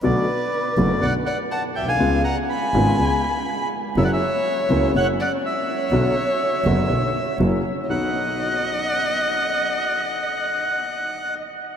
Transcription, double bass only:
X:1
M:4/4
L:1/8
Q:1/4=122
K:F#phr
V:1 name="Double bass" clef=bass
B,,, z2 F,,, B,,, z2 B,,, | C,, z2 ^G,,, C,, z3 | F,,, z2 C,, F,,, z3 | B,,, z2 F,,, B,,, z F,,, z |
B,,, z6 z | z8 |]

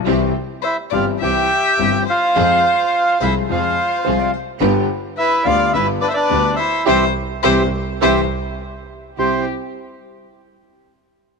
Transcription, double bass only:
X:1
M:4/4
L:1/8
Q:1/4=106
K:C
V:1 name="Double bass" clef=bass
C,, z2 G,,, C,, z G,,, z | F,, z2 C,, F,, z C,, z | G,,, z2 D,, G,,, z D,, z | C,, z C,, z C,, z3 |
C,, z6 z |]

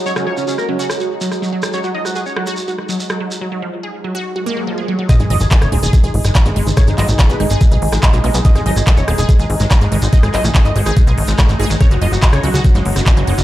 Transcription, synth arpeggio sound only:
X:1
M:4/4
L:1/16
Q:1/4=143
K:F#dor
V:1 name="Synth arpeggio sound" clef=bass
F, F, ^E, z G z F, F z F z F, z F, F, z | F, F, ^E, z G z F, F z F z F, z F, F, z | F, F, ^E, z G z F, F z F ^A, F, E, G F, F, | G, G, F, z A z G, G z G z G, z G, G, z |
G, G, F, z A z G, G z G z G, z G, G, z | G, G, F, z A z G, G z G z G, z G, G, z | G, G, F, z A z G, G z G z G, G, A, G z | F, F, ^E, z G z F, F z G, z F, z F, F, z |]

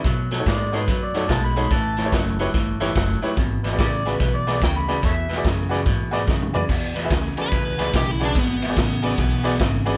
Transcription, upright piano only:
X:1
M:4/4
L:1/16
Q:"Swing" 1/4=144
K:Emix
V:1 name="Upright piano"
z2 [Ac] [^DFAc] z2 [DFAc] z3 [DFAc] z3 [DFAc] z | z2 [Bc] [E=GBc] z2 [EGBc] z3 [EGBc] z3 [EGBc] z | z2 [Bd] [FGBd] z2 [FGBd] z3 [FGBd] z3 [FGBd] z | z2 [Be] [FGBd] z2 [FGBd] z3 [FGBd] z3 [FGBd] z |
z2 [Bd] [FGBe] z2 [FGBd] z3 [FGBd] z3 [FGBd] z | z2 [Be] [FGBd] z2 [FGBd] z3 [FGBd] z3 [FGBd] z |]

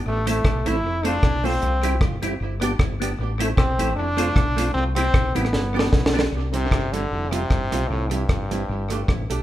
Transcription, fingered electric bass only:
X:1
M:4/4
L:1/8
Q:"Swing" 1/4=153
K:C
V:1 name="Fingered electric bass" clef=bass
A,,,2 B,,, A,,, F,,,2 B,,,2 | C,,2 G,,,2 G,,,2 G,,,2 | A,,,2 B,,, A,,, F,,,2 B,,,2 | C,,2 B,,, A,,, G,,,2 B,,,2 |
C,,2 G,,,2 F,,,2 G,,, B,,, | C,,2 G,,,2 G,,,2 A,,, B,,, |]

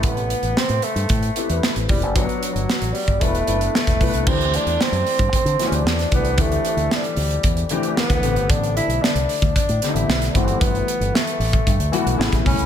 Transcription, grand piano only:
X:1
M:4/4
L:1/8
Q:1/4=114
K:Dmix
V:1 name="Grand piano"
[C,A,EGB]2 z3 [A,CEGB]2 [A,CEGB] | [F,B,DFB]3 z [A,B,DEB] [A,B,DEB]2 [A,B,DEB] | [E,A,CDG]3 z2 [E,A,CDFG]2 [E,A,CDG] | [E,A,CDG]3 z2 [E,A,CDG]2 [D,A,B,CG]- |
[D,A,B,CG]2 z3 [D,A,B,CG]2 [E,G,A,B,F]- | [E,G,A,B,F]2 z3 [E,G,A,B,F] [^C,G,A,B,E] [C,G,A,B,E] |]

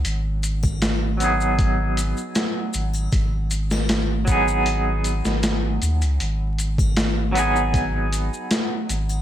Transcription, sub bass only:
X:1
M:4/4
L:1/16
Q:1/4=78
K:G#m
V:1 name="Sub bass" clef=bass
G,,,8- G,,,3 z3 G,,,2 | G,,,8- G,,,3 G,,,3 D,, C,, | G,,,8- G,,,3 z3 G,,,2 |]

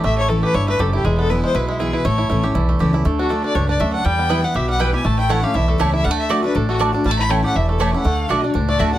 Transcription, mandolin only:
X:1
M:4/4
L:1/8
Q:"Swing" 1/4=240
K:D
V:1 name="Mandolin"
z8 | z8 | z8 | z8 |
z2 [B,EBg] z3 [B,EBg] z | z2 [A,Eca] z3 [A,Eca] z | z2 [A,Fda] z3 [A,Fda] z | z2 [A,Eca] z3 [A,Eca] z |
z2 [A,Fda] z3 [A,Fda] z |]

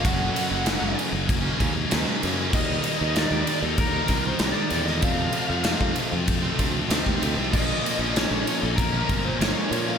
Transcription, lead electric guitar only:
X:1
M:4/4
L:1/16
Q:1/4=96
K:Fmix
V:1 name="Lead electric guitar"
^f6 z8 z2 | e4 d3 A B3 c d3 e | f6 z8 z2 | e4 _d3 A B3 c d3 f |]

